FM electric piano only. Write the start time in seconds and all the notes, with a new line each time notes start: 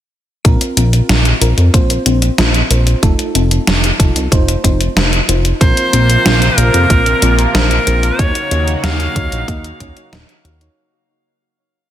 0.45 C4 F4 A#4
0.77 C4 F4 A#4
1.09 C4 F4 A#4
1.42 C4 F4 A#4
1.74 C4 F4 C5
2.06 C4 F4 C5
2.38 C4 F4 C5
2.71 C4 F4 C5
3.03 D#4 F4 A4
3.35 D#4 F4 A4
3.68 F4 A4
4.00 D#4 F4 A4
4.32 D#4 F4 C5
4.64 D#4 F4 C5
4.97 D#4 F4 C5
5.29 D#4 F4 C5
5.61 C4 F4 A#4
5.93 C4 F4 A#4
6.26 C4 F4 A#4
6.58 C4 F4 A#4
6.90 C4 F4 C5
7.22 C4 F4 C5
7.55 C4 F4 C5
7.87 C4 F4 C5
8.19 D#4 F#4 C#5
8.51 D#4 F#4 C#5
8.84 F#4 C#5
9.16 D#4 F#4 C#5
9.48 D#4 F#4 D#5
9.81 D#4 F#4 C#5
9.96 D#4 F#4 C#5
10.45 D#4 F#4 F5
10.61 D#4 F#4 C#5